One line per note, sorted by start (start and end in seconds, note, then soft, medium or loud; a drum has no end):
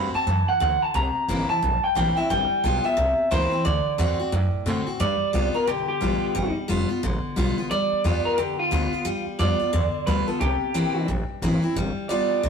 0.00 0.14 G2 loud
0.00 0.13 D3 medium
0.00 0.14 A3 medium
0.00 0.14 C4 medium
0.00 0.13 F#4 loud
0.00 0.11 B5 loud
0.14 0.27 C4 soft
0.14 0.27 F#4 medium
0.14 0.46 A5 medium
0.14 muted upright bass stroke medium
0.27 0.47 F#2 medium
0.27 0.60 E3 medium
0.48 0.60 F#5 loud
0.48 muted upright bass stroke medium
0.60 0.81 D2 loud
0.60 0.93 D3 medium
0.60 0.82 F#5 loud
0.82 0.95 A5 medium
0.82 muted upright bass stroke medium
0.94 1.15 C2 medium
0.94 1.60 C3 medium
0.94 1.46 A#5 loud
1.15 muted upright bass stroke medium
1.28 1.49 G1 medium
1.28 1.49 E3 medium
1.28 1.49 A#3 medium
1.28 1.49 C4 medium
1.28 1.48 E4 loud
1.49 1.62 C4 soft
1.49 1.62 E4 medium
1.49 1.83 A5 medium
1.49 muted upright bass stroke medium
1.62 1.83 A#1 medium
1.62 2.27 G2 medium
1.83 1.95 G5 loud
1.83 muted upright bass stroke medium
1.95 2.16 A1 medium
1.95 2.16 E3 medium
1.95 2.16 A#3 medium
1.95 2.17 C4 medium
1.95 2.16 E4 medium
1.95 2.17 G5 loud
2.17 2.30 C4 soft
2.17 2.29 E4 medium
2.17 2.23 E5 medium
2.17 muted upright bass stroke medium
2.30 2.50 G1 loud
2.30 2.62 G3 medium
2.30 2.85 G5 loud
2.51 muted upright bass stroke medium
2.64 2.84 B1 loud
2.64 2.84 G3 medium
2.64 2.84 B3 medium
2.64 2.83 F4 loud
2.84 2.97 B3 soft
2.84 2.97 F4 medium
2.84 3.28 E5 loud
2.84 muted upright bass stroke medium
2.97 3.18 C2 medium
2.97 3.62 C3 medium
3.19 muted upright bass stroke medium
3.31 3.52 C#2 medium
3.31 3.51 E3 medium
3.31 3.51 A#3 medium
3.31 3.52 C4 medium
3.31 3.50 E4 loud
3.31 3.65 C5 medium
3.52 3.65 C4 soft
3.52 3.64 E4 medium
3.52 muted upright bass stroke medium
3.65 3.86 D2 medium
3.65 3.97 D3 loud
3.65 4.63 D5 medium
3.86 muted upright bass stroke medium
3.98 4.19 E2 medium
3.98 4.19 D3 medium
3.98 4.19 A3 loud
3.98 4.19 C4 medium
3.98 4.18 F#4 loud
4.20 4.33 C4 soft
4.20 4.32 F#4 medium
4.20 muted upright bass stroke medium
4.32 4.53 F#2 medium
4.32 4.98 A2 medium
4.53 muted upright bass stroke medium
4.66 4.86 A2 loud
4.66 4.86 D3 medium
4.66 4.87 A3 medium
4.66 4.87 C4 loud
4.66 4.85 F#4 medium
4.87 5.00 C4 soft
4.87 4.99 F#4 medium
4.87 muted upright bass stroke medium
5.00 5.21 G2 medium
5.00 5.32 G3 loud
5.00 5.53 D5 loud
5.21 muted upright bass stroke medium
5.33 5.54 C2 medium
5.33 5.54 G3 medium
5.33 5.54 B3 medium
5.33 5.53 F4 medium
5.54 5.68 B3 soft
5.54 5.67 F4 medium
5.54 5.67 A#4 medium
5.54 muted upright bass stroke medium
5.67 5.87 B1 medium
5.67 6.33 D3 medium
5.67 5.87 G4 medium
5.88 6.54 G4 loud
5.88 muted upright bass stroke soft
6.01 6.22 A1 medium
6.01 6.33 G3 medium
6.01 6.34 B3 medium
6.01 6.35 F4 medium
6.22 muted upright bass stroke medium
6.35 6.55 G1 medium
6.35 6.67 G3 loud
6.56 muted upright bass stroke medium
6.68 6.89 F1 medium
6.68 6.89 G3 loud
6.68 6.89 B3 medium
6.68 6.88 F4 loud
6.89 7.03 B3 soft
6.89 7.02 F4 medium
6.89 muted upright bass stroke medium
7.03 7.24 A1 medium
7.03 7.68 D3 medium
7.24 muted upright bass stroke medium
7.36 7.57 B1 medium
7.36 7.57 G3 medium
7.36 7.57 B3 medium
7.36 7.57 F4 medium
7.58 7.71 B3 soft
7.58 7.70 F4 medium
7.58 muted upright bass stroke medium
7.71 7.90 D2 loud
7.71 8.03 G3 loud
7.71 8.24 D5 loud
7.92 muted upright bass stroke soft
8.04 8.25 E2 loud
8.04 8.37 G3 medium
8.04 8.37 B3 medium
8.04 8.37 F4 loud
8.25 8.38 A#4 medium
8.25 muted upright bass stroke medium
8.38 8.58 F2 medium
8.38 9.03 D3 medium
8.38 8.58 G4 medium
8.59 9.25 F4 medium
8.59 muted upright bass stroke soft
8.71 8.92 D2 loud
8.71 8.92 G3 medium
8.71 8.92 B3 loud
8.71 8.91 F4 medium
8.93 9.06 B3 medium
8.93 9.05 F4 medium
8.93 muted upright bass stroke medium
9.05 9.25 G2 medium
9.05 9.38 G3 loud
9.27 muted upright bass stroke soft
9.39 9.60 F2 loud
9.39 9.59 G3 medium
9.39 9.59 B3 medium
9.39 9.58 F4 loud
9.39 10.05 D5 loud
9.60 9.73 B3 soft
9.60 9.72 F4 medium
9.60 muted upright bass stroke medium
9.73 9.94 E2 medium
9.73 10.38 D3 medium
9.94 muted upright bass stroke medium
10.07 10.27 D2 loud
10.07 10.27 G3 medium
10.07 10.27 B3 medium
10.07 10.26 F4 loud
10.07 10.27 B4 medium
10.27 10.41 B3 soft
10.27 10.40 F4 medium
10.27 10.40 A4 medium
10.27 muted upright bass stroke medium
10.40 10.61 C2 medium
10.40 11.06 C3 medium
10.40 11.06 G4 loud
10.62 muted upright bass stroke medium
10.74 10.94 A#1 medium
10.74 11.07 E3 medium
10.74 11.07 A#3 loud
10.74 11.07 C4 loud
10.74 11.08 E4 loud
10.95 muted upright bass stroke soft
11.08 11.28 A1 medium
11.08 11.73 G2 medium
11.29 muted upright bass stroke medium
11.42 11.62 G#1 loud
11.42 11.62 E3 medium
11.42 11.62 A#3 medium
11.42 11.62 C4 medium
11.42 11.61 E4 loud
11.62 11.76 C4 soft
11.62 11.75 E4 medium
11.62 muted upright bass stroke medium
11.76 11.96 G1 loud
11.76 12.08 G3 loud
11.97 muted upright bass stroke medium
12.09 12.29 A1 loud
12.09 12.42 G3 medium
12.09 12.42 B3 medium
12.09 12.42 F4 loud
12.09 12.49 D5 loud
12.31 muted upright bass stroke soft
12.43 12.49 B1 medium
12.43 12.49 D3 medium